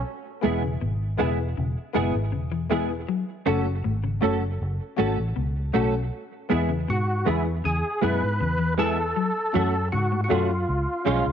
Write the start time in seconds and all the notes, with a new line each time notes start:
0.41 E1 B2 G#3 B3 E4 G#4
0.62 C#3
0.81 G#1 B2
1.17 E1 C#3 G#3 B3 E4 G#4
1.57 E1 C#3
1.93 F#1 B2 G#3 B3 E4 G#4
2.15 G#1
2.32 E1 C#3
2.52 E3
2.69 E3 G#3 B3 E4 G#4
3.08 F#3
3.46 F#1 C#3 A3 C#4 F#4 A4
3.84 G#1 A2
4.04 C#3
4.21 F#1 C#3 A3 C#4 F#4 A4
4.62 F#1
4.97 G#1 A3 C#4 F#4 A4
5.18 A1
5.36 C#2 B2
5.73 B1 A2 A3 C#4 F#4 A4
6.49 E2 B2 G#3 B3 E4 G#4
6.69 C#3
6.88 G#2 B2 F#4
7.25 E2 C#3 G#3 B3 E4 G#4
7.64 E2 C#3 G#4
8.01 F#2 B2 G#3 B3 E4 G#4 B4
8.23 G#2
8.40 E2 C#3
8.59 E3
8.77 E3 G#3 B3 E4 G#4 A4
9.16 F#3
9.53 F#2 E3 F#3 A3 C#4 F#4 A4
9.92 G#2 C#3 F#4
10.12 A2
10.24 F#4
10.28 F#2 B2 F#3 A3 C#4 F4 F#4 A4
10.69 C#2
11.05 B1 F3 G#3 C#4 F4 G#4
11.26 C#2